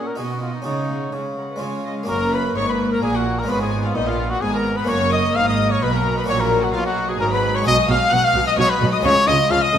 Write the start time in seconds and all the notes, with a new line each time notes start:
Already playing: A#2 C#4 F#4 F#5
0.07 A#4
0.15 B2 B3 D#4 F#4 G#4 D#5 F#5
0.30 F#4
0.41 B3 F4 D#5 F#5
0.54 D#4
0.62 C#3 G#3 C#4 D#4 F#4 C#5 F#5
0.89 G#3 C#5 F#5
1.12 C#3 G#3 C#4 G#4 F#5
1.36 G#3 A#4 F#5
1.49 B4
1.56 G#3 C#4 F4
1.60 C#3 G#3 C#5 F5
1.85 G#3 D#5 F5
2.03 A#3 C#4 F#4
2.08 F#1 F#2 A#3 A#4 A#5
2.33 B4 B5
2.55 G#1 G#2 A#3 C#5 C#6
2.67 B4 B5
2.90 A#4 A#5
3.02 A#1 A#2 G#4 G#5
3.14 F#4 F#5
3.37 A#4 A#5
3.44 G#3 B3 C#4
3.48 G#1 G#2 B3 F4 B4 B5
3.61 G#4 G#5
3.83 F4 F5
3.95 A#1 A#2 D#4 D#5
4.07 F4 F5
4.30 F#4 F#5
4.41 G#1 G#2 B3 G#4 G#5
4.53 A#4 A#5
4.77 B4 B5
4.84 F#1 F#2 A#3 C#4 F#4 C#5 C#6
4.88 F#2 A#3 C#5
5.11 D#5 D#6
5.34 G#1 G#2 F5 F6
5.47 D#5 D#6
5.70 C#5 C#6
5.81 B1 B2 B4 B5
5.93 A#4 A#5
6.17 B4 B5
6.24 A#2 A#3 C#4 F#4 C#6
6.28 A#1 A#2 F#3 C#5
6.40 A#4 A#5
6.63 F#4 F#5
6.72 B1 B2 F4 F5
6.85 F#4 F#5
7.09 G#4 G#5
7.19 G#1 G#2 F#3 A#4 A#5
7.31 B4 B5
7.54 C#5 C#6
7.62 G#3 F#4 G#4
7.66 B1 B2 F#3 D#5 D#6
7.89 B1 B2 F#3 F5 F6
8.11 B1 B2 F#3 F#5 F#6
8.23 F5 F6
8.35 B1 B2 F#3
8.47 D#5 D#6
8.57 B1 B2 F#3 C#5 C#6
8.69 B4 B5
8.80 B1 B2 F#3
8.92 D#5 D#6
9.00 C#2 F3 G#3 F4 G#4 C#6
9.04 C#3 C#5
9.26 C#2 C#3 F3 D#5 D#6
9.49 C#2 C#3 F3 F5 F6
9.62 D#5 D#6
9.73 C#2 C#3 F3